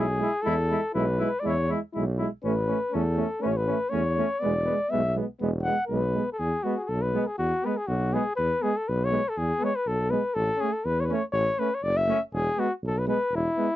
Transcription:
0.00 0.23 B1 medium
0.00 0.44 G#4 medium
0.18 0.29 G#3 medium
0.18 0.31 E4 medium
0.42 0.55 G#3 medium
0.42 0.55 E4 medium
0.42 0.94 A4 loud
0.46 0.73 E2 medium
0.69 0.81 G#3 medium
0.69 0.79 E4 medium
0.94 1.22 B1 loud
0.94 1.05 G#3 medium
0.94 1.04 E4 medium
0.94 1.41 B4 medium
1.18 1.29 G#3 medium
1.18 1.28 E4 medium
1.40 1.53 G#3 medium
1.40 1.49 D5 medium
1.44 1.72 E2 medium
1.44 1.54 E4 medium
1.44 1.71 C#5 loud
1.69 1.80 G#3 medium
1.69 1.79 E4 medium
1.93 2.24 B1 loud
1.93 2.05 G#3 medium
1.93 2.04 E4 medium
2.18 2.29 G#3 soft
2.18 2.28 E4 medium
2.44 2.71 A1 medium
2.44 2.55 A3 medium
2.44 2.54 C#4 medium
2.44 2.96 B4 medium
2.67 2.79 A3 medium
2.67 2.77 C#4 medium
2.91 3.21 E2 loud
2.91 3.03 A3 medium
2.91 3.02 C#4 medium
2.91 3.44 A4 medium
3.16 3.27 A3 medium
3.16 3.27 C#4 medium
3.41 3.71 A1 medium
3.41 3.52 A3 medium
3.41 3.51 C#4 medium
3.41 3.49 B4 medium
3.47 3.58 C#5 medium
3.57 3.91 B4 medium
3.66 3.78 A3 medium
3.66 3.76 C#4 medium
3.90 4.20 E2 loud
3.90 4.01 A3 medium
3.90 4.02 C#4 medium
3.90 4.41 C#5 medium
4.17 4.27 A3 medium
4.17 4.27 C#4 medium
4.40 4.70 E1 loud
4.40 4.53 G#3 medium
4.40 4.51 B3 medium
4.40 4.92 D5 medium
4.64 4.74 B3 medium
4.69 4.78 G#3 medium
4.90 5.20 B1 medium
4.90 5.01 G#3 medium
4.90 5.00 B3 medium
4.90 5.15 E5 medium
5.15 5.25 G#3 medium
5.15 5.26 B3 medium
5.40 5.68 E1 loud
5.40 5.51 G#3 medium
5.40 5.50 B3 medium
5.63 5.76 G#3 medium
5.63 5.75 B3 medium
5.63 5.86 F#5 loud
5.87 6.17 B1 loud
5.87 6.00 G#3 medium
5.87 6.29 B4 medium
5.92 6.01 B3 medium
6.13 6.24 G#3 medium
6.13 6.26 B3 medium
6.33 6.41 A4 medium
6.39 6.53 E2 medium
6.39 6.65 G#4 loud
6.63 6.74 G#3 medium
6.63 6.75 B3 medium
6.63 6.78 F#4 medium
6.77 6.86 F#4 medium
6.77 6.81 G#4 medium
6.85 6.90 G#4 medium
6.85 7.03 A4 medium
6.89 7.16 B1 medium
7.02 7.29 B4 medium
7.13 7.24 G#3 medium
7.13 7.23 B3 medium
7.27 7.37 G#4 medium
7.38 7.52 E2 medium
7.38 7.67 F#4 loud
7.63 7.75 G#3 medium
7.63 7.73 B3 medium
7.63 7.78 B4 medium
7.77 7.89 G#4 medium
7.87 8.16 B1 loud
7.87 8.15 F#4 medium
8.13 8.24 G#3 medium
8.13 8.23 B3 medium
8.13 8.35 G#4 medium
8.36 8.52 E2 medium
8.36 8.64 B4 loud
8.61 8.73 G#3 medium
8.61 8.71 B3 medium
8.61 8.78 G#4 medium
8.77 8.90 A4 medium
8.88 9.16 B1 loud
8.88 9.06 B4 medium
9.04 9.30 C#5 medium
9.10 9.21 G#3 medium
9.10 9.20 B3 medium
9.29 9.39 A4 medium
9.38 9.51 E2 medium
9.38 9.66 G#4 medium
9.59 9.72 G#3 medium
9.59 9.69 B3 medium
9.64 9.77 C#5 medium
9.76 9.89 B4 medium
9.87 10.14 B1 medium
9.87 10.12 A4 medium
10.10 10.22 G#3 medium
10.10 10.20 B3 medium
10.10 10.36 B4 medium
10.34 10.49 A1 medium
10.34 10.62 A4 loud
10.56 10.67 C#4 medium
10.56 10.74 G#4 loud
10.62 10.72 A3 medium
10.73 10.87 A4 medium
10.85 11.12 E2 medium
10.85 11.02 B4 medium
11.00 11.13 B4 medium
11.00 11.04 C#5 medium
11.09 11.21 A3 medium
11.09 11.19 C#4 medium
11.09 11.24 C#5 medium
11.32 11.47 A1 loud
11.32 11.60 C#5 loud
11.59 11.69 A3 medium
11.59 11.69 C#4 medium
11.59 11.76 B4 loud
11.74 11.84 C#5 medium
11.83 12.11 F#1 medium
11.83 11.98 D5 loud
11.97 12.22 E5 loud
12.07 12.17 A3 medium
12.07 12.18 C#4 medium
12.33 12.47 E1 loud
12.33 12.61 G#4 loud
12.57 12.68 G#3 medium
12.57 12.67 B3 medium
12.57 12.72 F#4 medium
12.83 13.10 B1 medium
12.83 13.00 A4 medium
12.98 13.07 B4 medium
13.06 13.18 G#3 medium
13.06 13.17 B3 medium
13.06 13.37 B4 medium
13.32 13.46 E1 medium
13.32 13.76 E4 loud
13.57 13.68 G#3 medium
13.57 13.67 B3 medium

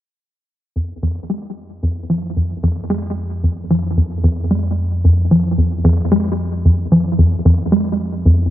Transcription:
0.76 0.93 F2 medium
0.76 8.50 F2 medium
1.03 1.19 F2 medium
1.30 1.46 G#3 medium
1.83 2.08 F2 medium
2.10 2.35 F3 medium
2.37 2.53 F2 medium
2.63 2.80 F2 medium
2.90 3.07 G#3 medium
3.43 3.69 F2 medium
3.70 3.96 F3 medium
3.97 4.14 F2 medium
4.24 4.41 F2 medium
4.51 4.67 G#3 medium
5.04 5.29 F2 medium
5.31 5.56 F3 medium
5.58 5.75 F2 medium
5.84 6.01 F2 loud
6.12 6.28 G#3 medium
6.65 6.90 F2 medium
6.92 7.17 F3 medium
7.18 7.35 F2 medium
7.45 7.62 F2 medium
7.72 7.89 G#3 medium
8.26 8.50 F2 medium

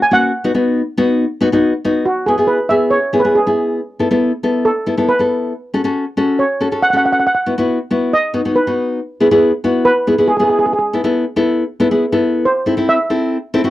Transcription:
0.02 0.13 G#5 medium
0.11 0.31 A#3 medium
0.11 0.31 C#4 medium
0.11 0.31 F#4 medium
0.11 1.60 F#5 medium
0.44 0.51 B3 medium
0.44 0.51 D#4 medium
0.44 0.51 F#4 medium
0.54 0.81 B3 medium
0.54 0.81 D#4 medium
0.54 0.81 F#4 medium
0.97 1.24 B3 medium
0.97 1.24 D#4 medium
0.97 1.24 F#4 loud
1.41 1.48 B3 medium
1.41 1.48 D#4 medium
1.41 1.48 F#4 loud
1.52 1.72 B3 medium
1.52 1.72 D#4 medium
1.52 1.72 F#4 medium
1.85 2.04 B3 medium
1.85 2.04 D#4 medium
1.85 2.04 F#4 medium
2.05 2.28 F#4 medium
2.26 2.35 B3 medium
2.26 2.35 E4 medium
2.26 2.49 G#4 medium
2.26 2.35 G#4 medium
2.38 2.58 B3 medium
2.38 2.58 E4 medium
2.38 2.58 G#4 medium
2.47 2.71 B4 medium
2.69 2.97 B3 medium
2.69 2.97 E4 medium
2.69 2.97 G#4 medium
2.69 2.79 E5 medium
2.90 3.21 C#5 medium
3.13 3.20 B3 medium
3.13 3.20 E4 medium
3.13 3.21 G#4 medium
3.20 3.36 B4 medium
3.24 3.38 B3 medium
3.24 3.38 E4 medium
3.24 3.38 G#4 medium
3.35 3.97 G#4 medium
3.46 3.79 B3 medium
3.46 3.79 E4 medium
3.46 3.79 G#4 medium
3.99 4.07 B3 medium
3.99 4.07 E4 medium
3.99 4.07 A4 medium
4.11 4.31 B3 medium
4.11 4.31 E4 medium
4.11 4.31 A4 medium
4.43 4.70 B3 medium
4.43 4.70 E4 medium
4.43 4.70 A4 medium
4.65 5.06 A4 medium
4.86 4.94 B3 medium
4.86 4.94 E4 medium
4.86 4.94 A4 medium
4.97 5.11 B3 medium
4.97 5.11 E4 medium
4.97 5.11 A4 medium
5.09 5.70 B4 loud
5.19 5.52 B3 medium
5.19 5.52 E4 medium
5.19 5.52 A4 medium
5.74 5.80 C#4 medium
5.74 5.81 F#4 medium
5.74 5.81 A4 loud
5.84 6.04 C#4 medium
5.84 6.04 F#4 medium
5.84 6.04 A4 medium
6.17 6.43 C#4 medium
6.17 6.43 F#4 medium
6.17 6.43 A4 medium
6.39 6.84 C#5 medium
6.60 6.67 C#4 medium
6.60 6.67 F#4 medium
6.60 6.67 A4 medium
6.72 6.85 C#4 medium
6.72 6.84 F#4 medium
6.72 6.85 A4 medium
6.83 6.89 F#5 loud
6.90 7.25 C#4 medium
6.90 7.26 F#4 medium
6.90 7.26 A4 medium
6.90 6.96 F#5 medium
6.97 7.04 F#5 medium
7.06 7.11 F#5 medium
7.12 7.18 F#5 medium
7.20 7.25 F#5 medium
7.27 7.33 F#5 medium
7.35 7.42 F#5 medium
7.46 7.53 B3 medium
7.46 7.54 E4 medium
7.46 7.53 F#4 medium
7.58 7.78 B3 medium
7.58 7.78 E4 medium
7.58 7.78 F#4 medium
7.91 8.12 B3 medium
7.91 8.12 E4 medium
7.91 8.12 F#4 medium
8.13 8.57 D#5 loud
8.34 8.40 B3 medium
8.34 8.40 D#4 medium
8.34 8.40 F#4 medium
8.45 8.58 B3 medium
8.45 8.58 D#4 medium
8.45 8.58 F#4 medium
8.56 9.17 B4 medium
8.67 8.99 B3 medium
8.67 8.99 D#4 medium
8.67 8.99 F#4 medium
9.20 9.27 B3 medium
9.20 9.27 E4 medium
9.20 9.27 G#4 medium
9.31 9.51 B3 medium
9.31 9.51 E4 medium
9.31 9.51 G#4 loud
9.64 9.90 B3 medium
9.64 9.90 E4 medium
9.64 9.90 F#4 medium
9.85 10.30 B4 loud
10.07 10.14 B3 medium
10.07 10.14 E4 medium
10.07 10.14 G#4 medium
10.18 10.31 B3 medium
10.18 10.31 E4 medium
10.18 10.31 G#4 medium
10.28 10.35 G#4 medium
10.37 10.72 B3 medium
10.37 10.72 E4 medium
10.37 10.42 G#4 medium
10.37 10.72 G#4 medium
10.44 10.48 G#4 medium
10.50 10.57 G#4 medium
10.59 10.65 G#4 medium
10.66 10.72 G#4 medium
10.73 10.78 G#4 medium
10.79 10.87 G#4 medium
10.93 11.00 B3 medium
10.93 11.00 E4 medium
10.93 11.00 A4 medium
11.04 11.24 B3 medium
11.04 11.24 E4 medium
11.04 11.24 A4 loud
11.36 11.63 B3 medium
11.36 11.63 E4 medium
11.36 11.63 A4 medium
11.80 11.87 B3 medium
11.80 11.87 E4 medium
11.80 11.87 A4 loud
11.91 12.04 B3 medium
11.91 12.04 E4 medium
11.91 12.04 G#4 medium
12.12 12.45 B3 medium
12.12 12.45 E4 medium
12.12 12.45 A4 loud
12.45 12.90 C5 medium
12.66 12.73 C4 medium
12.66 12.73 E4 medium
12.66 12.74 A4 medium
12.77 12.97 C4 medium
12.77 12.97 E4 medium
12.77 12.97 A4 medium
12.89 13.50 E5 loud
13.10 13.37 C4 medium
13.10 13.36 E4 medium
13.10 13.37 A4 medium
13.54 13.61 C4 loud
13.54 13.61 E4 medium
13.54 13.61 A4 loud
13.64 13.70 C4 medium
13.64 13.70 E4 medium
13.64 13.70 F#4 medium

